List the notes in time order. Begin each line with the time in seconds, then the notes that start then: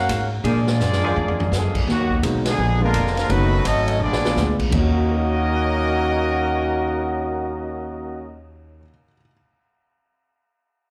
Already playing: A#3 C#4 F#4 A#4 F5 F#5
0.09 G#2, kick, hi-hat pedal, ride
0.44 A#2 F3 G#3 A#3 D4 G#4, kick, ride
0.49 A#3 F4 G#4 D5
0.67 snare
0.80 F#2, snare, hi-hat pedal
0.93 snare
1.03 F3 A#3 D4 G#4, floor tom
1.16 F2, floor tom
1.28 floor tom
1.40 floor tom
1.52 F#2 D3 F3 G#3, snare, hi-hat pedal
1.56 A#3 D4 G#4
1.75 kick, crash
1.87 D#2 B2 D#3 F#3 A#3 B3 F#4, kick, snare
2.10 kick
2.23 B1 F#3 G#3 A#3 B3 D#4, kick, hi-hat pedal, ride
2.46 D3 F3 G#3 B3 D4 G#4, snare, ride
2.58 A#1
2.80 D3 F3 G#3 A#3 B3 D4 F4 A#4
2.94 F1, kick, hi-hat pedal, ride
3.07 snare
3.15 D3 F3 G#3 A#3 D4 A#4, snare, ride
3.19 F4
3.29 F#1 D#3 F#3 A3 B3 C#4 D#4 F#4 B4, kick, ride
3.65 G#1 F#3 A3 C#4 D#4 F#4 A4 D#5, kick, hi-hat pedal, ride
3.88 ride
4.00 A#1 F3 G#3 B3 D4 F4 G#4 D5
4.13 snare
4.24 A#2 G#3 B3 D4 F4, snare
4.36 D2, snare, hi-hat pedal
4.59 muted upright bass stroke, kick, crash
4.68 D#2 D#3 A#3 C#4, ride bell
4.72 D#2 D#3 C#4 F#4 A#4 D#5, kick
4.77 D#4 F#4
5.10 A#4
5.17 D#5
5.25 F#5
5.35 A#5
5.44 D#6
5.56 F#6
5.67 A#6